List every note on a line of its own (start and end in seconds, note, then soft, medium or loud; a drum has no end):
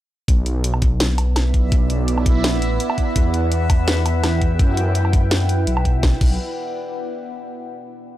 0.28 1.35 B1 loud
0.28 4.31 B3 medium
0.28 6.04 E4 medium
0.28 6.04 E5 medium
0.28 kick loud
0.28 closed hi-hat medium
0.46 closed hi-hat medium
0.64 closed hi-hat medium
0.74 6.03 B4 medium
0.74 low woodblock medium
0.82 kick loud
0.82 closed hi-hat medium
1.00 4.31 D5 medium
1.00 snare loud
1.00 closed hi-hat medium
1.18 closed hi-hat medium
1.18 low woodblock medium
1.36 1.71 B1 loud
1.36 snare medium
1.36 closed hi-hat medium
1.36 low woodblock medium
1.40 6.03 F#5 medium
1.54 kick medium
1.54 closed hi-hat soft
1.72 2.47 B1 loud
1.72 kick loud
1.72 closed hi-hat medium
1.90 closed hi-hat medium
2.08 closed hi-hat medium
2.18 low woodblock medium
2.26 kick loud
2.26 closed hi-hat medium
2.44 2.68 A#1 loud
2.44 snare loud
2.44 closed hi-hat medium
2.62 closed hi-hat medium
2.68 2.79 A1 loud
2.80 closed hi-hat medium
2.90 low woodblock medium
2.98 kick medium
2.98 closed hi-hat soft
3.16 4.22 E2 loud
3.16 6.03 E4 medium
3.16 kick loud
3.16 closed hi-hat medium
3.34 closed hi-hat medium
3.52 closed hi-hat medium
3.70 kick loud
3.70 closed hi-hat medium
3.70 low woodblock medium
3.83 6.03 G5 medium
3.88 snare loud
3.88 closed hi-hat medium
4.06 closed hi-hat medium
4.06 low woodblock medium
4.24 4.58 E2 loud
4.24 snare medium
4.24 closed hi-hat medium
4.24 low woodblock medium
4.42 kick medium
4.42 closed hi-hat soft
4.59 5.66 F#2 loud
4.59 kick loud
4.59 closed hi-hat medium
4.77 closed hi-hat medium
4.95 closed hi-hat medium
5.05 low woodblock soft
5.13 kick loud
5.13 closed hi-hat medium
5.31 snare loud
5.31 closed hi-hat medium
5.49 closed hi-hat medium
5.67 6.02 B1 loud
5.67 closed hi-hat medium
5.77 low woodblock medium
5.85 kick medium
5.85 closed hi-hat soft
6.03 6.14 B1 loud
6.03 7.43 B3 medium
6.03 kick loud
6.03 snare medium
6.09 7.43 B4 medium
6.14 7.43 D5 medium
6.20 6.38 B1 loud
6.20 7.43 F#5 medium
6.20 kick loud
6.20 crash medium